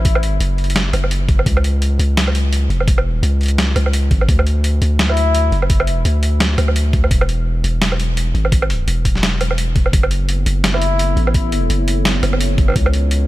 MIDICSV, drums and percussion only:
0, 0, Header, 1, 2, 480
1, 0, Start_track
1, 0, Key_signature, 3, "minor"
1, 0, Tempo, 352941
1, 71, Time_signature, 4, 2, 24, 8
1, 18051, End_track
2, 0, Start_track
2, 0, Title_t, "Drums"
2, 68, Note_on_c, 9, 36, 122
2, 73, Note_on_c, 9, 42, 87
2, 204, Note_off_c, 9, 36, 0
2, 209, Note_off_c, 9, 42, 0
2, 210, Note_on_c, 9, 77, 78
2, 313, Note_on_c, 9, 42, 66
2, 346, Note_off_c, 9, 77, 0
2, 449, Note_off_c, 9, 42, 0
2, 551, Note_on_c, 9, 42, 75
2, 687, Note_off_c, 9, 42, 0
2, 792, Note_on_c, 9, 42, 32
2, 871, Note_off_c, 9, 42, 0
2, 871, Note_on_c, 9, 42, 42
2, 951, Note_off_c, 9, 42, 0
2, 951, Note_on_c, 9, 42, 56
2, 1030, Note_off_c, 9, 42, 0
2, 1030, Note_on_c, 9, 38, 122
2, 1030, Note_on_c, 9, 42, 83
2, 1166, Note_off_c, 9, 38, 0
2, 1166, Note_off_c, 9, 42, 0
2, 1270, Note_on_c, 9, 42, 70
2, 1270, Note_on_c, 9, 77, 56
2, 1406, Note_off_c, 9, 42, 0
2, 1406, Note_off_c, 9, 77, 0
2, 1410, Note_on_c, 9, 77, 52
2, 1511, Note_on_c, 9, 42, 84
2, 1546, Note_off_c, 9, 77, 0
2, 1647, Note_off_c, 9, 42, 0
2, 1748, Note_on_c, 9, 36, 112
2, 1752, Note_on_c, 9, 42, 39
2, 1884, Note_off_c, 9, 36, 0
2, 1888, Note_off_c, 9, 42, 0
2, 1892, Note_on_c, 9, 77, 55
2, 1989, Note_on_c, 9, 36, 123
2, 1995, Note_on_c, 9, 42, 86
2, 2028, Note_off_c, 9, 77, 0
2, 2125, Note_off_c, 9, 36, 0
2, 2131, Note_off_c, 9, 42, 0
2, 2133, Note_on_c, 9, 77, 78
2, 2234, Note_on_c, 9, 42, 63
2, 2269, Note_off_c, 9, 77, 0
2, 2370, Note_off_c, 9, 42, 0
2, 2474, Note_on_c, 9, 42, 74
2, 2610, Note_off_c, 9, 42, 0
2, 2713, Note_on_c, 9, 42, 71
2, 2849, Note_off_c, 9, 42, 0
2, 2956, Note_on_c, 9, 38, 125
2, 2956, Note_on_c, 9, 42, 82
2, 3092, Note_off_c, 9, 38, 0
2, 3092, Note_off_c, 9, 42, 0
2, 3094, Note_on_c, 9, 77, 57
2, 3195, Note_on_c, 9, 42, 69
2, 3230, Note_off_c, 9, 77, 0
2, 3331, Note_off_c, 9, 42, 0
2, 3435, Note_on_c, 9, 42, 85
2, 3571, Note_off_c, 9, 42, 0
2, 3676, Note_on_c, 9, 42, 40
2, 3812, Note_off_c, 9, 42, 0
2, 3814, Note_on_c, 9, 77, 51
2, 3911, Note_on_c, 9, 36, 127
2, 3915, Note_on_c, 9, 42, 77
2, 3950, Note_off_c, 9, 77, 0
2, 4047, Note_off_c, 9, 36, 0
2, 4051, Note_off_c, 9, 42, 0
2, 4053, Note_on_c, 9, 77, 73
2, 4189, Note_off_c, 9, 77, 0
2, 4394, Note_on_c, 9, 42, 74
2, 4530, Note_off_c, 9, 42, 0
2, 4636, Note_on_c, 9, 42, 31
2, 4668, Note_off_c, 9, 42, 0
2, 4668, Note_on_c, 9, 42, 40
2, 4703, Note_off_c, 9, 42, 0
2, 4703, Note_on_c, 9, 42, 48
2, 4738, Note_off_c, 9, 42, 0
2, 4738, Note_on_c, 9, 42, 54
2, 4874, Note_off_c, 9, 42, 0
2, 4874, Note_on_c, 9, 38, 124
2, 4874, Note_on_c, 9, 42, 79
2, 5010, Note_off_c, 9, 38, 0
2, 5010, Note_off_c, 9, 42, 0
2, 5112, Note_on_c, 9, 42, 67
2, 5112, Note_on_c, 9, 77, 50
2, 5248, Note_off_c, 9, 42, 0
2, 5248, Note_off_c, 9, 77, 0
2, 5251, Note_on_c, 9, 77, 52
2, 5351, Note_on_c, 9, 42, 81
2, 5387, Note_off_c, 9, 77, 0
2, 5487, Note_off_c, 9, 42, 0
2, 5589, Note_on_c, 9, 36, 108
2, 5594, Note_on_c, 9, 42, 37
2, 5725, Note_off_c, 9, 36, 0
2, 5730, Note_off_c, 9, 42, 0
2, 5731, Note_on_c, 9, 77, 52
2, 5829, Note_on_c, 9, 36, 118
2, 5832, Note_on_c, 9, 42, 77
2, 5867, Note_off_c, 9, 77, 0
2, 5965, Note_off_c, 9, 36, 0
2, 5968, Note_off_c, 9, 42, 0
2, 5971, Note_on_c, 9, 77, 74
2, 6074, Note_on_c, 9, 42, 55
2, 6107, Note_off_c, 9, 77, 0
2, 6210, Note_off_c, 9, 42, 0
2, 6311, Note_on_c, 9, 42, 74
2, 6447, Note_off_c, 9, 42, 0
2, 6551, Note_on_c, 9, 42, 65
2, 6687, Note_off_c, 9, 42, 0
2, 6790, Note_on_c, 9, 38, 121
2, 6790, Note_on_c, 9, 42, 76
2, 6926, Note_off_c, 9, 38, 0
2, 6926, Note_off_c, 9, 42, 0
2, 6929, Note_on_c, 9, 77, 57
2, 7029, Note_on_c, 9, 42, 62
2, 7065, Note_off_c, 9, 77, 0
2, 7165, Note_off_c, 9, 42, 0
2, 7270, Note_on_c, 9, 42, 82
2, 7406, Note_off_c, 9, 42, 0
2, 7512, Note_on_c, 9, 42, 36
2, 7648, Note_off_c, 9, 42, 0
2, 7648, Note_on_c, 9, 77, 50
2, 7748, Note_on_c, 9, 36, 110
2, 7750, Note_on_c, 9, 42, 77
2, 7784, Note_off_c, 9, 77, 0
2, 7884, Note_off_c, 9, 36, 0
2, 7886, Note_off_c, 9, 42, 0
2, 7888, Note_on_c, 9, 77, 76
2, 7988, Note_on_c, 9, 42, 59
2, 8024, Note_off_c, 9, 77, 0
2, 8124, Note_off_c, 9, 42, 0
2, 8230, Note_on_c, 9, 42, 72
2, 8366, Note_off_c, 9, 42, 0
2, 8469, Note_on_c, 9, 42, 67
2, 8605, Note_off_c, 9, 42, 0
2, 8709, Note_on_c, 9, 38, 122
2, 8709, Note_on_c, 9, 42, 77
2, 8845, Note_off_c, 9, 38, 0
2, 8845, Note_off_c, 9, 42, 0
2, 8949, Note_on_c, 9, 42, 64
2, 8949, Note_on_c, 9, 77, 54
2, 9085, Note_off_c, 9, 42, 0
2, 9085, Note_off_c, 9, 77, 0
2, 9088, Note_on_c, 9, 77, 53
2, 9192, Note_on_c, 9, 42, 82
2, 9224, Note_off_c, 9, 77, 0
2, 9328, Note_off_c, 9, 42, 0
2, 9429, Note_on_c, 9, 36, 106
2, 9433, Note_on_c, 9, 42, 36
2, 9565, Note_off_c, 9, 36, 0
2, 9569, Note_off_c, 9, 42, 0
2, 9573, Note_on_c, 9, 77, 54
2, 9669, Note_on_c, 9, 36, 112
2, 9672, Note_on_c, 9, 42, 78
2, 9709, Note_off_c, 9, 77, 0
2, 9805, Note_off_c, 9, 36, 0
2, 9808, Note_off_c, 9, 42, 0
2, 9810, Note_on_c, 9, 77, 81
2, 9912, Note_on_c, 9, 42, 58
2, 9946, Note_off_c, 9, 77, 0
2, 10048, Note_off_c, 9, 42, 0
2, 10393, Note_on_c, 9, 42, 69
2, 10529, Note_off_c, 9, 42, 0
2, 10630, Note_on_c, 9, 38, 113
2, 10630, Note_on_c, 9, 42, 82
2, 10766, Note_off_c, 9, 38, 0
2, 10766, Note_off_c, 9, 42, 0
2, 10770, Note_on_c, 9, 77, 58
2, 10875, Note_on_c, 9, 42, 68
2, 10906, Note_off_c, 9, 77, 0
2, 11011, Note_off_c, 9, 42, 0
2, 11113, Note_on_c, 9, 42, 79
2, 11249, Note_off_c, 9, 42, 0
2, 11353, Note_on_c, 9, 42, 36
2, 11489, Note_off_c, 9, 42, 0
2, 11491, Note_on_c, 9, 77, 56
2, 11590, Note_on_c, 9, 36, 114
2, 11591, Note_on_c, 9, 42, 81
2, 11627, Note_off_c, 9, 77, 0
2, 11726, Note_off_c, 9, 36, 0
2, 11727, Note_off_c, 9, 42, 0
2, 11728, Note_on_c, 9, 77, 83
2, 11832, Note_on_c, 9, 42, 65
2, 11864, Note_off_c, 9, 77, 0
2, 11968, Note_off_c, 9, 42, 0
2, 12072, Note_on_c, 9, 42, 75
2, 12208, Note_off_c, 9, 42, 0
2, 12310, Note_on_c, 9, 36, 58
2, 12311, Note_on_c, 9, 42, 69
2, 12446, Note_off_c, 9, 36, 0
2, 12447, Note_off_c, 9, 42, 0
2, 12451, Note_on_c, 9, 38, 36
2, 12553, Note_off_c, 9, 38, 0
2, 12553, Note_on_c, 9, 38, 120
2, 12553, Note_on_c, 9, 42, 87
2, 12689, Note_off_c, 9, 38, 0
2, 12689, Note_off_c, 9, 42, 0
2, 12794, Note_on_c, 9, 42, 69
2, 12794, Note_on_c, 9, 77, 56
2, 12929, Note_off_c, 9, 77, 0
2, 12929, Note_on_c, 9, 77, 54
2, 12930, Note_off_c, 9, 42, 0
2, 13029, Note_on_c, 9, 42, 81
2, 13065, Note_off_c, 9, 77, 0
2, 13165, Note_off_c, 9, 42, 0
2, 13269, Note_on_c, 9, 36, 97
2, 13269, Note_on_c, 9, 42, 40
2, 13405, Note_off_c, 9, 36, 0
2, 13405, Note_off_c, 9, 42, 0
2, 13407, Note_on_c, 9, 77, 55
2, 13508, Note_on_c, 9, 36, 116
2, 13509, Note_on_c, 9, 42, 83
2, 13543, Note_off_c, 9, 77, 0
2, 13644, Note_off_c, 9, 36, 0
2, 13645, Note_off_c, 9, 42, 0
2, 13646, Note_on_c, 9, 77, 81
2, 13748, Note_on_c, 9, 42, 67
2, 13782, Note_off_c, 9, 77, 0
2, 13884, Note_off_c, 9, 42, 0
2, 13989, Note_on_c, 9, 42, 79
2, 14125, Note_off_c, 9, 42, 0
2, 14229, Note_on_c, 9, 42, 76
2, 14365, Note_off_c, 9, 42, 0
2, 14469, Note_on_c, 9, 38, 117
2, 14469, Note_on_c, 9, 42, 85
2, 14605, Note_off_c, 9, 38, 0
2, 14605, Note_off_c, 9, 42, 0
2, 14608, Note_on_c, 9, 77, 63
2, 14709, Note_on_c, 9, 42, 73
2, 14744, Note_off_c, 9, 77, 0
2, 14845, Note_off_c, 9, 42, 0
2, 14951, Note_on_c, 9, 42, 85
2, 15087, Note_off_c, 9, 42, 0
2, 15190, Note_on_c, 9, 42, 38
2, 15326, Note_off_c, 9, 42, 0
2, 15330, Note_on_c, 9, 77, 55
2, 15428, Note_on_c, 9, 36, 118
2, 15432, Note_on_c, 9, 42, 85
2, 15466, Note_off_c, 9, 77, 0
2, 15564, Note_off_c, 9, 36, 0
2, 15568, Note_off_c, 9, 42, 0
2, 15671, Note_on_c, 9, 42, 63
2, 15807, Note_off_c, 9, 42, 0
2, 15912, Note_on_c, 9, 42, 77
2, 16048, Note_off_c, 9, 42, 0
2, 16153, Note_on_c, 9, 42, 74
2, 16289, Note_off_c, 9, 42, 0
2, 16392, Note_on_c, 9, 38, 127
2, 16392, Note_on_c, 9, 42, 86
2, 16528, Note_off_c, 9, 38, 0
2, 16528, Note_off_c, 9, 42, 0
2, 16632, Note_on_c, 9, 42, 72
2, 16632, Note_on_c, 9, 77, 54
2, 16768, Note_off_c, 9, 42, 0
2, 16768, Note_off_c, 9, 77, 0
2, 16770, Note_on_c, 9, 77, 57
2, 16871, Note_on_c, 9, 42, 91
2, 16906, Note_off_c, 9, 77, 0
2, 17007, Note_off_c, 9, 42, 0
2, 17110, Note_on_c, 9, 36, 109
2, 17110, Note_on_c, 9, 42, 39
2, 17246, Note_off_c, 9, 36, 0
2, 17246, Note_off_c, 9, 42, 0
2, 17249, Note_on_c, 9, 77, 52
2, 17272, Note_off_c, 9, 77, 0
2, 17272, Note_on_c, 9, 77, 42
2, 17300, Note_off_c, 9, 77, 0
2, 17300, Note_on_c, 9, 77, 34
2, 17325, Note_off_c, 9, 77, 0
2, 17325, Note_on_c, 9, 77, 29
2, 17350, Note_on_c, 9, 36, 127
2, 17351, Note_on_c, 9, 42, 81
2, 17461, Note_off_c, 9, 77, 0
2, 17486, Note_off_c, 9, 36, 0
2, 17487, Note_off_c, 9, 42, 0
2, 17491, Note_on_c, 9, 77, 79
2, 17592, Note_on_c, 9, 42, 63
2, 17627, Note_off_c, 9, 77, 0
2, 17728, Note_off_c, 9, 42, 0
2, 17831, Note_on_c, 9, 42, 77
2, 17967, Note_off_c, 9, 42, 0
2, 18051, End_track
0, 0, End_of_file